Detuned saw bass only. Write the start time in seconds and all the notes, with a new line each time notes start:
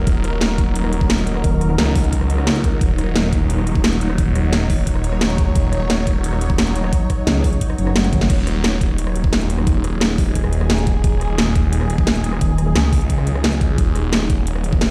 0.07 D#1
1.78 C#2
2.81 D#1
4.18 D#1
5.55 D#1
8.30 D#1
9.67 D#1
11.04 D#1
12.75 C#2
13.78 D#1